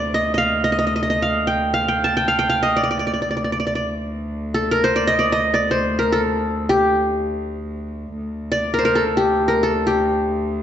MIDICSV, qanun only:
0, 0, Header, 1, 2, 480
1, 0, Start_track
1, 0, Tempo, 500000
1, 10201, End_track
2, 0, Start_track
2, 0, Title_t, "Qanun"
2, 0, Program_c, 0, 107
2, 0, Note_on_c, 0, 72, 68
2, 0, Note_on_c, 0, 74, 76
2, 137, Note_on_c, 0, 75, 74
2, 194, Note_off_c, 0, 74, 0
2, 302, Note_off_c, 0, 72, 0
2, 322, Note_off_c, 0, 75, 0
2, 326, Note_on_c, 0, 75, 53
2, 363, Note_on_c, 0, 77, 77
2, 611, Note_off_c, 0, 75, 0
2, 615, Note_on_c, 0, 75, 73
2, 688, Note_off_c, 0, 75, 0
2, 692, Note_on_c, 0, 75, 54
2, 751, Note_off_c, 0, 75, 0
2, 755, Note_on_c, 0, 75, 64
2, 829, Note_off_c, 0, 75, 0
2, 833, Note_on_c, 0, 75, 49
2, 916, Note_off_c, 0, 75, 0
2, 919, Note_on_c, 0, 75, 58
2, 982, Note_off_c, 0, 75, 0
2, 985, Note_on_c, 0, 75, 56
2, 1051, Note_off_c, 0, 75, 0
2, 1055, Note_on_c, 0, 75, 61
2, 1171, Note_off_c, 0, 77, 0
2, 1175, Note_on_c, 0, 77, 73
2, 1413, Note_on_c, 0, 79, 73
2, 1664, Note_off_c, 0, 77, 0
2, 1668, Note_on_c, 0, 77, 78
2, 1805, Note_off_c, 0, 79, 0
2, 1809, Note_on_c, 0, 79, 70
2, 1960, Note_on_c, 0, 81, 79
2, 1968, Note_off_c, 0, 75, 0
2, 2077, Note_off_c, 0, 79, 0
2, 2081, Note_on_c, 0, 79, 78
2, 2184, Note_off_c, 0, 77, 0
2, 2188, Note_on_c, 0, 77, 74
2, 2288, Note_off_c, 0, 79, 0
2, 2292, Note_on_c, 0, 79, 82
2, 2392, Note_off_c, 0, 77, 0
2, 2396, Note_on_c, 0, 77, 72
2, 2521, Note_on_c, 0, 75, 71
2, 2654, Note_on_c, 0, 74, 64
2, 2702, Note_off_c, 0, 81, 0
2, 2712, Note_off_c, 0, 75, 0
2, 2717, Note_off_c, 0, 74, 0
2, 2721, Note_on_c, 0, 74, 53
2, 2787, Note_off_c, 0, 74, 0
2, 2791, Note_on_c, 0, 74, 58
2, 2869, Note_off_c, 0, 74, 0
2, 2873, Note_on_c, 0, 74, 49
2, 2942, Note_off_c, 0, 74, 0
2, 2946, Note_on_c, 0, 74, 48
2, 3006, Note_off_c, 0, 74, 0
2, 3010, Note_on_c, 0, 74, 42
2, 3086, Note_off_c, 0, 74, 0
2, 3087, Note_off_c, 0, 79, 0
2, 3090, Note_on_c, 0, 74, 46
2, 3170, Note_off_c, 0, 74, 0
2, 3174, Note_on_c, 0, 74, 41
2, 3229, Note_off_c, 0, 74, 0
2, 3232, Note_on_c, 0, 74, 42
2, 3248, Note_off_c, 0, 77, 0
2, 3302, Note_off_c, 0, 74, 0
2, 3306, Note_on_c, 0, 74, 43
2, 3378, Note_off_c, 0, 74, 0
2, 3382, Note_on_c, 0, 74, 50
2, 3449, Note_off_c, 0, 74, 0
2, 3453, Note_on_c, 0, 74, 46
2, 3516, Note_off_c, 0, 74, 0
2, 3520, Note_on_c, 0, 74, 54
2, 3599, Note_off_c, 0, 74, 0
2, 3603, Note_on_c, 0, 74, 49
2, 4362, Note_on_c, 0, 69, 76
2, 4525, Note_on_c, 0, 70, 73
2, 4548, Note_off_c, 0, 74, 0
2, 4582, Note_off_c, 0, 69, 0
2, 4645, Note_on_c, 0, 72, 87
2, 4759, Note_on_c, 0, 74, 81
2, 4871, Note_on_c, 0, 75, 84
2, 4929, Note_off_c, 0, 74, 0
2, 4980, Note_on_c, 0, 74, 72
2, 5038, Note_off_c, 0, 75, 0
2, 5110, Note_on_c, 0, 75, 80
2, 5168, Note_off_c, 0, 74, 0
2, 5316, Note_on_c, 0, 74, 77
2, 5374, Note_off_c, 0, 75, 0
2, 5477, Note_off_c, 0, 72, 0
2, 5481, Note_on_c, 0, 72, 75
2, 5611, Note_off_c, 0, 70, 0
2, 5748, Note_on_c, 0, 70, 72
2, 5879, Note_on_c, 0, 69, 76
2, 5937, Note_off_c, 0, 70, 0
2, 6262, Note_off_c, 0, 74, 0
2, 6425, Note_on_c, 0, 67, 66
2, 6494, Note_off_c, 0, 72, 0
2, 7003, Note_off_c, 0, 69, 0
2, 7630, Note_off_c, 0, 67, 0
2, 8175, Note_on_c, 0, 74, 82
2, 8388, Note_on_c, 0, 70, 68
2, 8435, Note_on_c, 0, 72, 63
2, 8491, Note_off_c, 0, 70, 0
2, 8495, Note_on_c, 0, 70, 72
2, 8595, Note_on_c, 0, 69, 68
2, 8653, Note_off_c, 0, 70, 0
2, 8803, Note_on_c, 0, 67, 67
2, 9101, Note_on_c, 0, 70, 69
2, 9121, Note_off_c, 0, 74, 0
2, 9159, Note_off_c, 0, 69, 0
2, 9245, Note_on_c, 0, 69, 67
2, 9302, Note_off_c, 0, 70, 0
2, 9448, Note_off_c, 0, 72, 0
2, 9468, Note_off_c, 0, 67, 0
2, 9472, Note_on_c, 0, 67, 65
2, 10201, Note_off_c, 0, 67, 0
2, 10201, Note_off_c, 0, 69, 0
2, 10201, End_track
0, 0, End_of_file